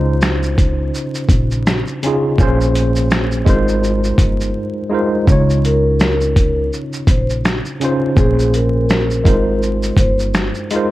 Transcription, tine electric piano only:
Already playing: C#3 C#4 D#4 F4 C5
2.03 C#3 C#4 D#4 F4
2.07 G#4
2.38 A#2 A#3 C#4 G#4
2.42 C5
3.45 G#3 D#4 F4 A#4
3.50 C5
4.90 G#3 D#4 F4 A#4
4.94 C5
5.27 C#3 C#4 D#4 F4
5.32 C#5
7.80 C#3 C#4 D#4 F4
7.85 C5
8.15 A#2 A#3 C#4 G#4
8.20 C5
9.24 G#3 D#4 F4 A#4
9.28 C5
10.71 G#3 D#4 F4 A#4
10.76 C5

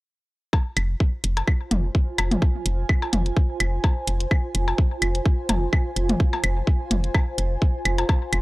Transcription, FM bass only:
0.77 F1
1.24 F1
1.71 F1
2.18 F1
2.66 F1
3.13 F1
3.60 F1
4.07 F1
4.55 F1
5.02 F1
5.49 F1
5.96 F1
6.44 F1
6.91 F1
7.38 F1
7.85 F1
8.33 F1

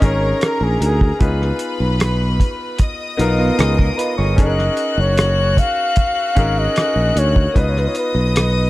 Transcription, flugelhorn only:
0.05 C#5
0.44 A#4
0.64 G#4
0.84 G#4
4.40 D#5
5.00 C#5
5.59 F5
6.59 D#5
7.19 C#5
7.60 D#5
7.69 C#5
7.79 B4
7.88 C#5
7.98 B4

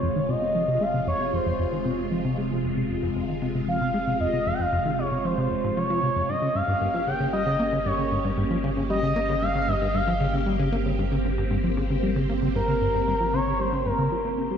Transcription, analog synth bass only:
0.03 F2
0.16 D#3
0.29 C3
0.42 C3
0.55 F3
0.68 C3
0.81 G#3
0.94 C3
1.07 F2
1.20 C3
1.33 F2
1.46 F2
1.59 F2
1.72 D#3
1.85 C3
1.99 C3
2.12 F3
2.25 C3
2.38 G#3
2.51 C3
2.64 F2
2.77 C3
2.90 F2
3.03 F2
3.16 F2
3.29 D#3
3.42 C3
3.55 C3
3.68 F3
3.81 C3
3.94 G#3
4.07 C3
4.20 F2
4.33 C3
4.46 F2
4.59 F2
4.73 F2
4.86 D#3
4.99 C3
5.12 C3
5.25 F3
5.38 C3
5.51 F2
5.64 G#2
5.77 F3
5.90 F3
6.03 C3
6.16 F2
6.29 G2
6.42 C#3
6.55 G2
6.68 G2
6.81 G2
6.94 F3
7.07 C#3
7.20 C#3
7.33 G3
7.46 C#3
7.60 A#3
7.73 C#3
7.86 G2
7.99 C#3
8.12 G2
8.25 G2
8.38 G2
8.51 F3
8.64 C#3
8.77 C#3
8.90 G3
9.03 C#3
9.16 A#3
9.29 C#3
9.42 G2
9.55 C#3
9.68 G2
9.82 G2
9.94 G2
10.07 F3
10.21 C#3
10.34 C#3
10.46 G3
10.59 C#3
10.72 A#3
10.86 C#3
10.99 G2
11.12 C#3
11.25 G2
11.38 G2
11.51 G2
11.64 F3
11.77 C#3
11.90 C#3
12.03 G3
12.16 C#3
12.29 A#3
12.42 C#3
12.55 G2
12.68 C#3
12.81 G2
12.94 G2
13.07 G2
13.20 F3
13.33 C#3
13.46 C#3
13.60 G3
13.73 C#3
13.86 G2
13.99 C#3
14.12 F3
14.25 A#3
14.38 C#3
14.51 G3

